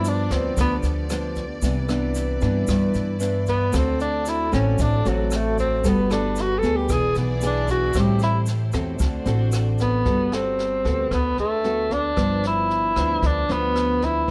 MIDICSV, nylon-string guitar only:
0, 0, Header, 1, 2, 480
1, 0, Start_track
1, 0, Key_signature, 1, "major"
1, 0, Tempo, 527241
1, 1477, Time_signature, 4, 2, 24, 8
1, 13025, End_track
2, 0, Start_track
2, 0, Title_t, "Nylon-string guitar"
2, 0, Program_c, 0, 24
2, 0, Note_on_c, 0, 43, 58
2, 0, Note_on_c, 0, 53, 58
2, 0, Note_on_c, 0, 59, 59
2, 0, Note_on_c, 0, 62, 65
2, 484, Note_off_c, 0, 53, 0
2, 485, Note_off_c, 0, 59, 0
2, 489, Note_off_c, 0, 62, 0
2, 498, Note_off_c, 0, 43, 0
2, 517, Note_on_c, 0, 50, 55
2, 521, Note_on_c, 0, 59, 49
2, 522, Note_on_c, 0, 53, 52
2, 528, Note_on_c, 0, 62, 66
2, 960, Note_off_c, 0, 53, 0
2, 961, Note_off_c, 0, 59, 0
2, 963, Note_off_c, 0, 62, 0
2, 1005, Note_on_c, 0, 53, 62
2, 1008, Note_on_c, 0, 59, 53
2, 1012, Note_on_c, 0, 62, 71
2, 1310, Note_off_c, 0, 53, 0
2, 1312, Note_off_c, 0, 59, 0
2, 1312, Note_off_c, 0, 62, 0
2, 1453, Note_off_c, 0, 50, 0
2, 1478, Note_on_c, 0, 48, 51
2, 1483, Note_on_c, 0, 52, 58
2, 1483, Note_on_c, 0, 59, 58
2, 1490, Note_on_c, 0, 62, 52
2, 1620, Note_off_c, 0, 52, 0
2, 1621, Note_off_c, 0, 59, 0
2, 1625, Note_off_c, 0, 62, 0
2, 1714, Note_on_c, 0, 52, 61
2, 1717, Note_on_c, 0, 59, 57
2, 1723, Note_on_c, 0, 62, 60
2, 2157, Note_off_c, 0, 52, 0
2, 2159, Note_off_c, 0, 59, 0
2, 2160, Note_off_c, 0, 62, 0
2, 2195, Note_on_c, 0, 52, 58
2, 2201, Note_on_c, 0, 59, 61
2, 2208, Note_on_c, 0, 62, 64
2, 2413, Note_off_c, 0, 48, 0
2, 2441, Note_on_c, 0, 43, 56
2, 2878, Note_off_c, 0, 52, 0
2, 2878, Note_off_c, 0, 59, 0
2, 2883, Note_off_c, 0, 62, 0
2, 2913, Note_on_c, 0, 52, 56
2, 2916, Note_on_c, 0, 59, 53
2, 2921, Note_on_c, 0, 62, 63
2, 3356, Note_off_c, 0, 52, 0
2, 3356, Note_off_c, 0, 59, 0
2, 3360, Note_off_c, 0, 62, 0
2, 3374, Note_off_c, 0, 43, 0
2, 3387, Note_on_c, 0, 50, 51
2, 3389, Note_on_c, 0, 57, 56
2, 3391, Note_on_c, 0, 60, 52
2, 3397, Note_on_c, 0, 66, 60
2, 4072, Note_off_c, 0, 57, 0
2, 4074, Note_off_c, 0, 60, 0
2, 4077, Note_off_c, 0, 66, 0
2, 4114, Note_on_c, 0, 57, 58
2, 4118, Note_on_c, 0, 60, 62
2, 4122, Note_on_c, 0, 66, 63
2, 4327, Note_off_c, 0, 50, 0
2, 4362, Note_on_c, 0, 45, 57
2, 4556, Note_off_c, 0, 57, 0
2, 4558, Note_off_c, 0, 60, 0
2, 4560, Note_off_c, 0, 66, 0
2, 4597, Note_on_c, 0, 57, 66
2, 4604, Note_on_c, 0, 60, 71
2, 4609, Note_on_c, 0, 66, 75
2, 5294, Note_off_c, 0, 45, 0
2, 5296, Note_off_c, 0, 57, 0
2, 5298, Note_off_c, 0, 60, 0
2, 5302, Note_off_c, 0, 66, 0
2, 5316, Note_on_c, 0, 55, 57
2, 5318, Note_on_c, 0, 59, 58
2, 5321, Note_on_c, 0, 66, 51
2, 5325, Note_on_c, 0, 69, 57
2, 5457, Note_off_c, 0, 59, 0
2, 5459, Note_off_c, 0, 66, 0
2, 5460, Note_off_c, 0, 69, 0
2, 5550, Note_on_c, 0, 59, 62
2, 5557, Note_on_c, 0, 66, 64
2, 5565, Note_on_c, 0, 69, 70
2, 5994, Note_off_c, 0, 59, 0
2, 5996, Note_off_c, 0, 66, 0
2, 6001, Note_off_c, 0, 69, 0
2, 6038, Note_on_c, 0, 59, 55
2, 6043, Note_on_c, 0, 62, 52
2, 6047, Note_on_c, 0, 68, 62
2, 6251, Note_off_c, 0, 55, 0
2, 6278, Note_on_c, 0, 52, 55
2, 6717, Note_off_c, 0, 59, 0
2, 6720, Note_off_c, 0, 62, 0
2, 6721, Note_off_c, 0, 68, 0
2, 6756, Note_on_c, 0, 59, 59
2, 6763, Note_on_c, 0, 68, 61
2, 6764, Note_on_c, 0, 62, 56
2, 7197, Note_off_c, 0, 59, 0
2, 7199, Note_off_c, 0, 62, 0
2, 7200, Note_off_c, 0, 68, 0
2, 7212, Note_off_c, 0, 52, 0
2, 7235, Note_on_c, 0, 45, 57
2, 7242, Note_on_c, 0, 55, 54
2, 7245, Note_on_c, 0, 60, 58
2, 7247, Note_on_c, 0, 64, 56
2, 7714, Note_off_c, 0, 60, 0
2, 7715, Note_off_c, 0, 55, 0
2, 7717, Note_off_c, 0, 64, 0
2, 7954, Note_on_c, 0, 60, 59
2, 7957, Note_on_c, 0, 66, 58
2, 7959, Note_on_c, 0, 69, 60
2, 8172, Note_off_c, 0, 45, 0
2, 8190, Note_on_c, 0, 50, 54
2, 8396, Note_off_c, 0, 60, 0
2, 8397, Note_off_c, 0, 66, 0
2, 8398, Note_off_c, 0, 69, 0
2, 8425, Note_on_c, 0, 60, 72
2, 8433, Note_on_c, 0, 66, 64
2, 8437, Note_on_c, 0, 69, 78
2, 9129, Note_off_c, 0, 50, 0
2, 9131, Note_off_c, 0, 60, 0
2, 9135, Note_off_c, 0, 66, 0
2, 9137, Note_off_c, 0, 69, 0
2, 9152, Note_on_c, 0, 59, 52
2, 9153, Note_on_c, 0, 55, 52
2, 9157, Note_on_c, 0, 66, 52
2, 9162, Note_on_c, 0, 69, 60
2, 9354, Note_off_c, 0, 59, 0
2, 9358, Note_off_c, 0, 66, 0
2, 9360, Note_off_c, 0, 69, 0
2, 9397, Note_on_c, 0, 66, 59
2, 9402, Note_on_c, 0, 69, 53
2, 9838, Note_off_c, 0, 66, 0
2, 9841, Note_off_c, 0, 69, 0
2, 9871, Note_on_c, 0, 59, 50
2, 9874, Note_on_c, 0, 66, 53
2, 9878, Note_on_c, 0, 69, 64
2, 10091, Note_off_c, 0, 55, 0
2, 10116, Note_on_c, 0, 50, 54
2, 10556, Note_off_c, 0, 59, 0
2, 10557, Note_off_c, 0, 66, 0
2, 10559, Note_off_c, 0, 69, 0
2, 10596, Note_on_c, 0, 59, 51
2, 10601, Note_on_c, 0, 66, 54
2, 10605, Note_on_c, 0, 69, 65
2, 10906, Note_off_c, 0, 59, 0
2, 10909, Note_off_c, 0, 66, 0
2, 10910, Note_off_c, 0, 69, 0
2, 11054, Note_off_c, 0, 50, 0
2, 11071, Note_on_c, 0, 43, 53
2, 11074, Note_on_c, 0, 53, 61
2, 11075, Note_on_c, 0, 59, 52
2, 11080, Note_on_c, 0, 62, 59
2, 11758, Note_off_c, 0, 53, 0
2, 11759, Note_off_c, 0, 59, 0
2, 11762, Note_off_c, 0, 62, 0
2, 11799, Note_on_c, 0, 53, 57
2, 11803, Note_on_c, 0, 59, 46
2, 11806, Note_on_c, 0, 62, 66
2, 12012, Note_off_c, 0, 43, 0
2, 12042, Note_on_c, 0, 50, 53
2, 12241, Note_off_c, 0, 53, 0
2, 12243, Note_off_c, 0, 59, 0
2, 12244, Note_off_c, 0, 62, 0
2, 12279, Note_on_c, 0, 53, 65
2, 12285, Note_on_c, 0, 59, 69
2, 12286, Note_on_c, 0, 62, 71
2, 12979, Note_off_c, 0, 50, 0
2, 12982, Note_off_c, 0, 53, 0
2, 12984, Note_off_c, 0, 59, 0
2, 12985, Note_off_c, 0, 62, 0
2, 12998, Note_on_c, 0, 52, 60
2, 13025, Note_off_c, 0, 52, 0
2, 13025, End_track
0, 0, End_of_file